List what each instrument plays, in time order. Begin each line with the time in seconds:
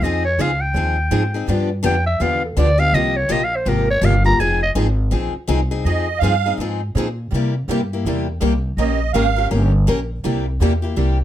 0.01 upright bass F2, steel-string acoustic guitar F3 C4, clarinet D#5
0.05 steel-string acoustic guitar D#4 G#4
0.25 clarinet C#5
0.38 upright bass C#2, steel-string acoustic guitar F3 C4 D#4 G#4, clarinet F5
0.61 clarinet G5
0.75 upright bass D#2, steel-string acoustic guitar F3 C4 D#4 G#4
1.11 upright bass G#2, steel-string acoustic guitar F3 C4 D#4 G#4
1.34 steel-string acoustic guitar C4 D#4 G#4
1.48 upright bass G2, steel-string acoustic guitar D3 F3 B3 D4 G4
1.83 upright bass F2, steel-string acoustic guitar D3 F3 B3 D4 G4, clarinet G5
2.06 clarinet E5
2.20 upright bass E2, steel-string acoustic guitar D3 F3 B3 D4 G4, clarinet F5
2.45 clarinet A4
2.57 upright bass D2, steel-string acoustic guitar D3 F3 B3 D4 G4, clarinet D5
2.78 steel-string acoustic guitar B3 D4 G4, clarinet F5
2.93 upright bass C2, steel-string acoustic guitar C3 F3 A#3 F4 G4, clarinet D#5
3.17 clarinet C#5
3.29 upright bass A#1, steel-string acoustic guitar C3 F3 A#3 F4 G4, clarinet D#5
3.44 clarinet F5
3.56 clarinet C5
3.65 upright bass G#1, steel-string acoustic guitar C3 F3 A#3 F4 G4, clarinet A#4
3.90 clarinet C#5
4.02 upright bass G1, steel-string acoustic guitar C3 F3 A#3 F4 G4, clarinet F5
4.24 steel-string acoustic guitar A#3 F4 G4, clarinet A#5
4.39 upright bass F1, steel-string acoustic guitar F3 C4 D#4 G#4, clarinet G#5
4.63 clarinet D#5
4.75 upright bass G#1, steel-string acoustic guitar F3 C4 D#4 G#4
5.11 upright bass A#1, steel-string acoustic guitar F3 C4 D#4 G#4
5.34 muted upright bass stroke
5.48 upright bass C2, steel-string acoustic guitar F3 C4 D#4 G#4
5.71 steel-string acoustic guitar C4 D#4 G#4
5.85 upright bass F2, steel-string acoustic guitar F3 C4 D#4 G#4, accordion D#5
6.19 upright bass G2, accordion F5
6.23 steel-string acoustic guitar F3 C4 D#4 G#4
6.46 steel-string acoustic guitar C4 D#4 G#4
6.58 upright bass G#2, steel-string acoustic guitar F3 C4 D#4 G#4
6.95 upright bass A#2, steel-string acoustic guitar F3 C4 D#4 G#4
7.31 upright bass C3, steel-string acoustic guitar C3 G3 A#3 E4 G4
7.35 steel-string acoustic guitar A#3
7.68 upright bass G2, steel-string acoustic guitar C3 G3 A#3 E4 G4
7.93 steel-string acoustic guitar A#3 E4 G4
8.05 upright bass E2, steel-string acoustic guitar C3 G3 A#3 E4 G4
8.40 upright bass C2, steel-string acoustic guitar C3 G3 A#3 E4 G4
8.77 upright bass A#1, steel-string acoustic guitar A#3 C#4 G4 A#4, accordion D#5
9.13 upright bass G#1, steel-string acoustic guitar A#3 C#4 G4 A#4, accordion F5
9.36 steel-string acoustic guitar C#4 G4 A#4
9.51 upright bass G1, steel-string acoustic guitar A#3 C#4 G4 A#4
9.87 upright bass A#1, steel-string acoustic guitar A#3 C#4 G4 A#4
10.24 upright bass C2, steel-string acoustic guitar C3 G3 A#3 E4 G4
10.60 upright bass E2, steel-string acoustic guitar C3 G3 A#3 E4 G4
10.82 steel-string acoustic guitar A#3 E4 G4
10.96 upright bass C2, steel-string acoustic guitar C3 G3 A#3 E4 G4